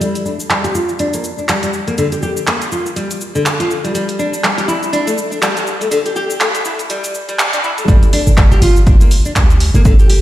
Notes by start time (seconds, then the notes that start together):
0.01 G3, closed hi-hat, shaker
0.15 closed hi-hat, shaker
0.26 D4, shaker
0.40 shaker
0.50 G3, finger snap, clap, closed hi-hat, shaker
0.64 G4, closed hi-hat, shaker
0.75 F4, shaker
0.89 shaker
0.99 D4, closed hi-hat, shaker
1.14 A#3, closed hi-hat, shaker
1.24 shaker
1.38 D4, shaker
1.49 G3, finger snap, clap, closed hi-hat, shaker
1.63 G3, closed hi-hat, shaker
1.73 shaker
1.88 A#3, closed hi-hat, shaker
1.98 D3, closed hi-hat, shaker
2.12 G4, closed hi-hat, shaker
2.23 G4, shaker
2.37 shaker
2.47 A#3, finger snap, clap, closed hi-hat, shaker
2.62 closed hi-hat, shaker
2.72 F4, shaker
2.86 shaker
2.96 G3, closed hi-hat, shaker
3.11 closed hi-hat, shaker
3.21 shaker
3.35 D3, shaker
3.46 finger snap, clap, closed hi-hat, shaker
3.60 F4, closed hi-hat, shaker
3.71 shaker
3.84 G3, closed hi-hat, shaker
3.94 G3, closed hi-hat, shaker
4.09 closed hi-hat, shaker
4.19 D4, shaker
4.34 shaker
4.43 G3, finger snap, clap, closed hi-hat, shaker
4.58 G4, closed hi-hat, shaker
4.68 E4, shaker
4.83 shaker
4.93 D4, closed hi-hat, shaker
5.07 A3, closed hi-hat, shaker
5.18 shaker
5.31 D4, shaker
5.42 G3, finger snap, clap, closed hi-hat, shaker
5.56 G3, closed hi-hat, shaker
5.67 shaker
5.81 A3, closed hi-hat, shaker
5.91 D3, closed hi-hat, shaker
6.06 G4, closed hi-hat, shaker
6.16 G4, shaker
6.30 shaker
6.41 A3, finger snap, clap, closed hi-hat, shaker
6.55 closed hi-hat, shaker
6.65 E4, shaker
6.79 closed hi-hat, shaker
6.90 G3, closed hi-hat, shaker
7.04 closed hi-hat, shaker
7.14 shaker
7.29 G3, closed hi-hat, shaker
7.39 C4, finger snap, clap, closed hi-hat, shaker
7.53 D4, closed hi-hat, shaker
7.64 E4, shaker
7.78 A3, closed hi-hat, shaker
7.88 G1 G3, kick, closed hi-hat, shaker
8.03 closed hi-hat, shaker
8.13 D4, open hi-hat, shaker
8.27 G1, shaker
8.37 G3, finger snap, kick, clap, closed hi-hat, shaker
8.51 G1 G4, closed hi-hat, shaker
8.62 G1 F4, open hi-hat, shaker
8.76 shaker
8.87 D4, kick, closed hi-hat, shaker
9.01 A#3, closed hi-hat, shaker
9.11 open hi-hat, shaker
9.25 D4, shaker
9.36 D2 G3, finger snap, kick, clap, closed hi-hat, shaker
9.50 G3, closed hi-hat, shaker
9.60 open hi-hat, shaker
9.74 G1 A#3, closed hi-hat, shaker
9.85 D3, kick, closed hi-hat, shaker
9.99 G4, closed hi-hat, shaker
10.10 G4, open hi-hat, shaker